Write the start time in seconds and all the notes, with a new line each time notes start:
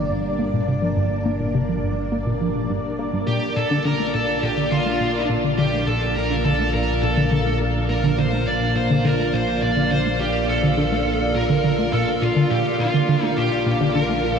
Already playing: G1 G3 A#3 D4 G4 A#4 D5
0.10 G2
0.39 A#3
0.54 A#2
0.68 C3
0.82 F3
0.97 G2
1.26 A#3
1.40 A#2
1.55 C3
1.69 F3
1.83 G2
2.12 A#3
2.27 A#2
2.41 F3
2.55 A#2
2.70 G2
2.99 A#3
3.13 G2
3.27 A#1 A#2 D4 G4 D5
3.56 A#2 A4
3.65 F4
3.71 D3
3.85 D3 A#4
3.97 A3 F5
4.14 A#2 A4
4.43 A#2 G4
4.57 D3
4.72 D3 F4
4.86 A3
5.01 A#2
5.29 A#2
5.44 D3
5.58 D3 G4
5.73 A3
5.87 A#2 A4
6.16 A#2 A#4
6.30 D3
6.45 D3 A4
6.59 A3
6.74 A#2 A#4
7.03 A#2 A4
7.17 D3
7.32 D3
7.46 A3
7.61 A#2
7.89 A#2 A#4 F5
8.04 D3
8.18 D3 C5
8.33 A3
8.47 A#2 D5
8.76 A#2 C5
8.90 D3
9.05 D3 A#4
9.19 A3
9.34 A#2 C5
9.62 A#2 D5
9.77 D3
9.91 D3 C5
10.06 A3
10.20 A#2 G4
10.49 A#2 A4
10.63 D3
10.78 D3
10.92 A3
11.06 A#2
11.35 A#2 A#4
11.50 D3
11.64 D3
11.79 A3
11.93 A#2 A4
12.22 A#2 F4
12.36 D3
12.50 A#1 A#2 G4 D5
12.79 A#2 F4
12.94 D3
13.09 D3
13.23 A3 D#4
13.37 A#2 G4
13.66 A#2
13.81 D3
13.94 D3 A#4
14.10 A3
14.24 A#2
14.33 A4